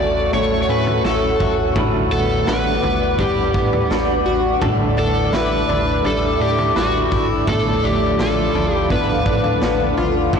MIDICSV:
0, 0, Header, 1, 8, 480
1, 0, Start_track
1, 0, Tempo, 714286
1, 1182, Time_signature, 4, 2, 24, 8
1, 6987, End_track
2, 0, Start_track
2, 0, Title_t, "Ambient pad"
2, 0, Program_c, 0, 92
2, 0, Note_on_c, 0, 69, 76
2, 0, Note_on_c, 0, 76, 64
2, 0, Note_on_c, 0, 78, 72
2, 0, Note_on_c, 0, 85, 80
2, 1164, Note_off_c, 0, 69, 0
2, 1164, Note_off_c, 0, 76, 0
2, 1164, Note_off_c, 0, 85, 0
2, 1182, Note_on_c, 0, 71, 77
2, 1183, Note_on_c, 0, 74, 68
2, 1185, Note_on_c, 0, 86, 85
2, 3076, Note_off_c, 0, 78, 0
2, 3083, Note_off_c, 0, 71, 0
2, 3084, Note_off_c, 0, 86, 0
2, 3098, Note_on_c, 0, 76, 66
2, 3099, Note_on_c, 0, 69, 74
2, 3100, Note_on_c, 0, 86, 79
2, 4995, Note_off_c, 0, 74, 0
2, 5001, Note_off_c, 0, 76, 0
2, 5021, Note_on_c, 0, 77, 67
2, 5021, Note_on_c, 0, 83, 68
2, 6914, Note_off_c, 0, 86, 0
2, 6922, Note_off_c, 0, 77, 0
2, 6922, Note_off_c, 0, 83, 0
2, 6987, Note_off_c, 0, 69, 0
2, 6987, End_track
3, 0, Start_track
3, 0, Title_t, "Five-string banjo"
3, 0, Program_c, 1, 105
3, 0, Note_on_c, 1, 66, 60
3, 460, Note_off_c, 1, 66, 0
3, 1662, Note_on_c, 1, 71, 59
3, 2381, Note_off_c, 1, 71, 0
3, 3102, Note_on_c, 1, 69, 49
3, 3820, Note_off_c, 1, 69, 0
3, 4543, Note_on_c, 1, 71, 62
3, 5236, Note_off_c, 1, 71, 0
3, 6987, End_track
4, 0, Start_track
4, 0, Title_t, "Electric slide guitar"
4, 0, Program_c, 2, 29
4, 0, Note_on_c, 2, 74, 91
4, 225, Note_off_c, 2, 74, 0
4, 227, Note_on_c, 2, 73, 90
4, 410, Note_off_c, 2, 73, 0
4, 418, Note_on_c, 2, 73, 60
4, 464, Note_off_c, 2, 73, 0
4, 468, Note_on_c, 2, 71, 77
4, 705, Note_off_c, 2, 71, 0
4, 708, Note_on_c, 2, 69, 62
4, 1040, Note_off_c, 2, 69, 0
4, 1427, Note_on_c, 2, 69, 80
4, 1667, Note_on_c, 2, 71, 84
4, 1671, Note_off_c, 2, 69, 0
4, 2150, Note_on_c, 2, 67, 68
4, 2159, Note_off_c, 2, 71, 0
4, 2599, Note_off_c, 2, 67, 0
4, 3354, Note_on_c, 2, 69, 87
4, 3592, Note_on_c, 2, 71, 86
4, 3595, Note_off_c, 2, 69, 0
4, 4073, Note_off_c, 2, 71, 0
4, 4076, Note_on_c, 2, 69, 89
4, 4293, Note_off_c, 2, 69, 0
4, 4312, Note_on_c, 2, 67, 80
4, 4550, Note_off_c, 2, 67, 0
4, 4553, Note_on_c, 2, 66, 69
4, 4883, Note_off_c, 2, 66, 0
4, 5033, Note_on_c, 2, 69, 85
4, 5275, Note_off_c, 2, 69, 0
4, 5276, Note_on_c, 2, 67, 80
4, 5493, Note_off_c, 2, 67, 0
4, 5514, Note_on_c, 2, 69, 80
4, 5877, Note_off_c, 2, 69, 0
4, 5877, Note_on_c, 2, 67, 80
4, 5992, Note_off_c, 2, 67, 0
4, 5995, Note_on_c, 2, 71, 77
4, 6682, Note_off_c, 2, 71, 0
4, 6987, End_track
5, 0, Start_track
5, 0, Title_t, "Clean electric guitar"
5, 0, Program_c, 3, 27
5, 0, Note_on_c, 3, 45, 52
5, 0, Note_on_c, 3, 54, 52
5, 0, Note_on_c, 3, 64, 53
5, 205, Note_off_c, 3, 45, 0
5, 213, Note_on_c, 3, 45, 60
5, 220, Note_off_c, 3, 54, 0
5, 222, Note_on_c, 3, 54, 57
5, 230, Note_off_c, 3, 64, 0
5, 230, Note_on_c, 3, 61, 57
5, 238, Note_on_c, 3, 64, 58
5, 686, Note_off_c, 3, 45, 0
5, 694, Note_on_c, 3, 45, 55
5, 701, Note_off_c, 3, 54, 0
5, 704, Note_on_c, 3, 54, 58
5, 705, Note_off_c, 3, 61, 0
5, 710, Note_off_c, 3, 64, 0
5, 713, Note_on_c, 3, 61, 58
5, 719, Note_on_c, 3, 64, 66
5, 1168, Note_off_c, 3, 45, 0
5, 1176, Note_on_c, 3, 45, 74
5, 1180, Note_on_c, 3, 50, 81
5, 1181, Note_off_c, 3, 54, 0
5, 1183, Note_off_c, 3, 61, 0
5, 1183, Note_on_c, 3, 55, 75
5, 1186, Note_on_c, 3, 62, 84
5, 1187, Note_off_c, 3, 64, 0
5, 1190, Note_on_c, 3, 66, 85
5, 1193, Note_on_c, 3, 71, 82
5, 1651, Note_off_c, 3, 55, 0
5, 1654, Note_on_c, 3, 55, 52
5, 1659, Note_off_c, 3, 45, 0
5, 1660, Note_off_c, 3, 62, 0
5, 1663, Note_off_c, 3, 66, 0
5, 1663, Note_on_c, 3, 62, 52
5, 1667, Note_off_c, 3, 71, 0
5, 1671, Note_on_c, 3, 66, 53
5, 1679, Note_on_c, 3, 71, 54
5, 2133, Note_off_c, 3, 55, 0
5, 2135, Note_on_c, 3, 55, 52
5, 2144, Note_off_c, 3, 62, 0
5, 2146, Note_off_c, 3, 66, 0
5, 2147, Note_on_c, 3, 62, 54
5, 2150, Note_off_c, 3, 71, 0
5, 2160, Note_on_c, 3, 71, 56
5, 2613, Note_off_c, 3, 55, 0
5, 2616, Note_on_c, 3, 55, 53
5, 2624, Note_off_c, 3, 62, 0
5, 2626, Note_on_c, 3, 62, 59
5, 2631, Note_off_c, 3, 71, 0
5, 2634, Note_on_c, 3, 66, 57
5, 2643, Note_on_c, 3, 71, 57
5, 3100, Note_on_c, 3, 45, 74
5, 3103, Note_off_c, 3, 50, 0
5, 3106, Note_on_c, 3, 50, 78
5, 3107, Note_off_c, 3, 55, 0
5, 3108, Note_off_c, 3, 66, 0
5, 3110, Note_off_c, 3, 62, 0
5, 3110, Note_on_c, 3, 55, 84
5, 3112, Note_off_c, 3, 71, 0
5, 3113, Note_on_c, 3, 62, 75
5, 3118, Note_on_c, 3, 64, 82
5, 3576, Note_off_c, 3, 50, 0
5, 3578, Note_on_c, 3, 50, 51
5, 3580, Note_off_c, 3, 55, 0
5, 3581, Note_off_c, 3, 45, 0
5, 3588, Note_on_c, 3, 55, 51
5, 3590, Note_off_c, 3, 64, 0
5, 3593, Note_off_c, 3, 62, 0
5, 3596, Note_on_c, 3, 62, 59
5, 3603, Note_on_c, 3, 64, 50
5, 4054, Note_off_c, 3, 50, 0
5, 4057, Note_on_c, 3, 50, 53
5, 4059, Note_off_c, 3, 55, 0
5, 4067, Note_on_c, 3, 55, 53
5, 4072, Note_off_c, 3, 64, 0
5, 4073, Note_off_c, 3, 62, 0
5, 4075, Note_on_c, 3, 62, 55
5, 4083, Note_on_c, 3, 64, 64
5, 4533, Note_off_c, 3, 50, 0
5, 4536, Note_on_c, 3, 50, 53
5, 4538, Note_off_c, 3, 55, 0
5, 4546, Note_on_c, 3, 55, 60
5, 4551, Note_off_c, 3, 62, 0
5, 4552, Note_off_c, 3, 64, 0
5, 4554, Note_on_c, 3, 62, 61
5, 4561, Note_on_c, 3, 64, 61
5, 5021, Note_on_c, 3, 45, 71
5, 5023, Note_off_c, 3, 50, 0
5, 5024, Note_off_c, 3, 55, 0
5, 5026, Note_on_c, 3, 50, 73
5, 5030, Note_on_c, 3, 53, 69
5, 5031, Note_off_c, 3, 62, 0
5, 5032, Note_off_c, 3, 64, 0
5, 5034, Note_on_c, 3, 59, 72
5, 5037, Note_on_c, 3, 62, 76
5, 5490, Note_off_c, 3, 50, 0
5, 5498, Note_on_c, 3, 50, 49
5, 5500, Note_off_c, 3, 53, 0
5, 5501, Note_off_c, 3, 45, 0
5, 5508, Note_off_c, 3, 59, 0
5, 5508, Note_on_c, 3, 53, 55
5, 5509, Note_off_c, 3, 62, 0
5, 5516, Note_on_c, 3, 59, 50
5, 5523, Note_on_c, 3, 62, 55
5, 5970, Note_off_c, 3, 50, 0
5, 5978, Note_on_c, 3, 50, 59
5, 5979, Note_off_c, 3, 53, 0
5, 5987, Note_off_c, 3, 59, 0
5, 5987, Note_on_c, 3, 53, 60
5, 5992, Note_off_c, 3, 62, 0
5, 5995, Note_on_c, 3, 59, 61
5, 6003, Note_on_c, 3, 62, 64
5, 6450, Note_off_c, 3, 50, 0
5, 6458, Note_on_c, 3, 50, 60
5, 6461, Note_off_c, 3, 53, 0
5, 6468, Note_off_c, 3, 59, 0
5, 6469, Note_on_c, 3, 53, 57
5, 6472, Note_off_c, 3, 62, 0
5, 6476, Note_on_c, 3, 59, 58
5, 6483, Note_on_c, 3, 62, 57
5, 6940, Note_off_c, 3, 50, 0
5, 6941, Note_on_c, 3, 45, 72
5, 6945, Note_off_c, 3, 53, 0
5, 6948, Note_on_c, 3, 54, 90
5, 6949, Note_off_c, 3, 59, 0
5, 6952, Note_off_c, 3, 62, 0
5, 6953, Note_on_c, 3, 61, 87
5, 6959, Note_on_c, 3, 64, 90
5, 6987, Note_off_c, 3, 45, 0
5, 6987, Note_off_c, 3, 54, 0
5, 6987, Note_off_c, 3, 61, 0
5, 6987, Note_off_c, 3, 64, 0
5, 6987, End_track
6, 0, Start_track
6, 0, Title_t, "Twelve-string acoustic guitar"
6, 0, Program_c, 4, 25
6, 0, Note_on_c, 4, 45, 79
6, 0, Note_on_c, 4, 66, 63
6, 221, Note_on_c, 4, 57, 56
6, 461, Note_on_c, 4, 61, 50
6, 695, Note_off_c, 4, 57, 0
6, 703, Note_on_c, 4, 57, 56
6, 937, Note_off_c, 4, 66, 0
6, 939, Note_on_c, 4, 66, 63
6, 1174, Note_off_c, 4, 45, 0
6, 1182, Note_on_c, 4, 45, 78
6, 1230, Note_off_c, 4, 57, 0
6, 1230, Note_off_c, 4, 61, 0
6, 1420, Note_on_c, 4, 59, 54
6, 1892, Note_off_c, 4, 59, 0
6, 1900, Note_on_c, 4, 59, 53
6, 2140, Note_on_c, 4, 55, 55
6, 2160, Note_off_c, 4, 66, 0
6, 2373, Note_off_c, 4, 59, 0
6, 2381, Note_on_c, 4, 59, 52
6, 2618, Note_off_c, 4, 55, 0
6, 2621, Note_on_c, 4, 55, 54
6, 2861, Note_on_c, 4, 66, 61
6, 3091, Note_off_c, 4, 45, 0
6, 3099, Note_on_c, 4, 45, 75
6, 3149, Note_off_c, 4, 66, 0
6, 3150, Note_off_c, 4, 59, 0
6, 3340, Note_on_c, 4, 62, 52
6, 3580, Note_on_c, 4, 64, 62
6, 3821, Note_off_c, 4, 62, 0
6, 3824, Note_on_c, 4, 62, 53
6, 4060, Note_off_c, 4, 55, 0
6, 4063, Note_on_c, 4, 55, 54
6, 4300, Note_off_c, 4, 62, 0
6, 4303, Note_on_c, 4, 62, 50
6, 4534, Note_off_c, 4, 55, 0
6, 4542, Note_on_c, 4, 55, 57
6, 4774, Note_off_c, 4, 64, 0
6, 4782, Note_on_c, 4, 64, 63
6, 5015, Note_off_c, 4, 45, 0
6, 5023, Note_on_c, 4, 45, 78
6, 5070, Note_off_c, 4, 55, 0
6, 5070, Note_off_c, 4, 64, 0
6, 5259, Note_off_c, 4, 62, 0
6, 5261, Note_on_c, 4, 62, 54
6, 5503, Note_on_c, 4, 65, 61
6, 5736, Note_off_c, 4, 62, 0
6, 5744, Note_on_c, 4, 62, 54
6, 5984, Note_on_c, 4, 59, 57
6, 6214, Note_off_c, 4, 62, 0
6, 6222, Note_on_c, 4, 62, 55
6, 6453, Note_off_c, 4, 59, 0
6, 6461, Note_on_c, 4, 59, 59
6, 6694, Note_off_c, 4, 65, 0
6, 6702, Note_on_c, 4, 65, 66
6, 6935, Note_off_c, 4, 45, 0
6, 6943, Note_on_c, 4, 45, 76
6, 6987, Note_off_c, 4, 45, 0
6, 6987, Note_off_c, 4, 59, 0
6, 6987, Note_off_c, 4, 62, 0
6, 6987, Note_off_c, 4, 65, 0
6, 6987, End_track
7, 0, Start_track
7, 0, Title_t, "Analog synth bass"
7, 0, Program_c, 5, 38
7, 0, Note_on_c, 5, 33, 90
7, 192, Note_off_c, 5, 33, 0
7, 224, Note_on_c, 5, 33, 95
7, 434, Note_off_c, 5, 33, 0
7, 464, Note_on_c, 5, 45, 92
7, 674, Note_off_c, 5, 45, 0
7, 704, Note_on_c, 5, 33, 96
7, 914, Note_off_c, 5, 33, 0
7, 943, Note_on_c, 5, 33, 105
7, 1154, Note_off_c, 5, 33, 0
7, 1180, Note_on_c, 5, 33, 95
7, 1392, Note_off_c, 5, 33, 0
7, 1421, Note_on_c, 5, 33, 91
7, 1633, Note_off_c, 5, 33, 0
7, 1662, Note_on_c, 5, 33, 92
7, 1873, Note_off_c, 5, 33, 0
7, 1902, Note_on_c, 5, 33, 88
7, 2113, Note_off_c, 5, 33, 0
7, 2142, Note_on_c, 5, 33, 88
7, 2353, Note_off_c, 5, 33, 0
7, 2382, Note_on_c, 5, 45, 86
7, 2593, Note_off_c, 5, 45, 0
7, 2621, Note_on_c, 5, 33, 89
7, 2832, Note_off_c, 5, 33, 0
7, 2858, Note_on_c, 5, 33, 99
7, 3071, Note_off_c, 5, 33, 0
7, 3102, Note_on_c, 5, 33, 96
7, 3313, Note_off_c, 5, 33, 0
7, 3341, Note_on_c, 5, 33, 88
7, 3553, Note_off_c, 5, 33, 0
7, 3580, Note_on_c, 5, 33, 90
7, 3792, Note_off_c, 5, 33, 0
7, 3822, Note_on_c, 5, 33, 84
7, 4033, Note_off_c, 5, 33, 0
7, 4061, Note_on_c, 5, 33, 99
7, 4273, Note_off_c, 5, 33, 0
7, 4299, Note_on_c, 5, 45, 90
7, 4511, Note_off_c, 5, 45, 0
7, 4538, Note_on_c, 5, 33, 97
7, 4751, Note_off_c, 5, 33, 0
7, 4783, Note_on_c, 5, 33, 94
7, 4994, Note_off_c, 5, 33, 0
7, 5023, Note_on_c, 5, 33, 95
7, 5234, Note_off_c, 5, 33, 0
7, 5263, Note_on_c, 5, 33, 94
7, 5474, Note_off_c, 5, 33, 0
7, 5502, Note_on_c, 5, 33, 101
7, 5713, Note_off_c, 5, 33, 0
7, 5741, Note_on_c, 5, 33, 98
7, 5953, Note_off_c, 5, 33, 0
7, 5983, Note_on_c, 5, 33, 88
7, 6193, Note_off_c, 5, 33, 0
7, 6223, Note_on_c, 5, 45, 86
7, 6433, Note_off_c, 5, 45, 0
7, 6461, Note_on_c, 5, 33, 92
7, 6672, Note_off_c, 5, 33, 0
7, 6702, Note_on_c, 5, 33, 88
7, 6913, Note_off_c, 5, 33, 0
7, 6943, Note_on_c, 5, 33, 91
7, 6987, Note_off_c, 5, 33, 0
7, 6987, End_track
8, 0, Start_track
8, 0, Title_t, "Drums"
8, 222, Note_on_c, 9, 43, 52
8, 289, Note_off_c, 9, 43, 0
8, 582, Note_on_c, 9, 43, 53
8, 649, Note_off_c, 9, 43, 0
8, 704, Note_on_c, 9, 38, 78
8, 771, Note_off_c, 9, 38, 0
8, 943, Note_on_c, 9, 36, 72
8, 943, Note_on_c, 9, 43, 54
8, 1010, Note_off_c, 9, 43, 0
8, 1011, Note_off_c, 9, 36, 0
8, 1181, Note_on_c, 9, 43, 99
8, 1182, Note_on_c, 9, 36, 87
8, 1249, Note_off_c, 9, 36, 0
8, 1249, Note_off_c, 9, 43, 0
8, 1661, Note_on_c, 9, 38, 108
8, 1728, Note_off_c, 9, 38, 0
8, 1902, Note_on_c, 9, 43, 61
8, 1970, Note_off_c, 9, 43, 0
8, 2142, Note_on_c, 9, 36, 83
8, 2142, Note_on_c, 9, 43, 52
8, 2209, Note_off_c, 9, 36, 0
8, 2209, Note_off_c, 9, 43, 0
8, 2381, Note_on_c, 9, 36, 77
8, 2449, Note_off_c, 9, 36, 0
8, 2504, Note_on_c, 9, 43, 56
8, 2571, Note_off_c, 9, 43, 0
8, 2626, Note_on_c, 9, 38, 89
8, 2693, Note_off_c, 9, 38, 0
8, 3102, Note_on_c, 9, 36, 96
8, 3104, Note_on_c, 9, 43, 105
8, 3169, Note_off_c, 9, 36, 0
8, 3171, Note_off_c, 9, 43, 0
8, 3583, Note_on_c, 9, 38, 100
8, 3650, Note_off_c, 9, 38, 0
8, 3825, Note_on_c, 9, 43, 60
8, 3893, Note_off_c, 9, 43, 0
8, 4063, Note_on_c, 9, 43, 57
8, 4130, Note_off_c, 9, 43, 0
8, 4423, Note_on_c, 9, 43, 56
8, 4490, Note_off_c, 9, 43, 0
8, 4544, Note_on_c, 9, 38, 86
8, 4611, Note_off_c, 9, 38, 0
8, 4784, Note_on_c, 9, 36, 74
8, 4851, Note_off_c, 9, 36, 0
8, 5023, Note_on_c, 9, 36, 92
8, 5024, Note_on_c, 9, 43, 95
8, 5090, Note_off_c, 9, 36, 0
8, 5091, Note_off_c, 9, 43, 0
8, 5504, Note_on_c, 9, 38, 99
8, 5571, Note_off_c, 9, 38, 0
8, 5746, Note_on_c, 9, 43, 58
8, 5813, Note_off_c, 9, 43, 0
8, 5983, Note_on_c, 9, 36, 82
8, 5984, Note_on_c, 9, 43, 54
8, 6050, Note_off_c, 9, 36, 0
8, 6051, Note_off_c, 9, 43, 0
8, 6222, Note_on_c, 9, 36, 75
8, 6289, Note_off_c, 9, 36, 0
8, 6343, Note_on_c, 9, 43, 57
8, 6410, Note_off_c, 9, 43, 0
8, 6463, Note_on_c, 9, 38, 84
8, 6531, Note_off_c, 9, 38, 0
8, 6702, Note_on_c, 9, 43, 57
8, 6770, Note_off_c, 9, 43, 0
8, 6943, Note_on_c, 9, 36, 88
8, 6943, Note_on_c, 9, 43, 110
8, 6987, Note_off_c, 9, 36, 0
8, 6987, Note_off_c, 9, 43, 0
8, 6987, End_track
0, 0, End_of_file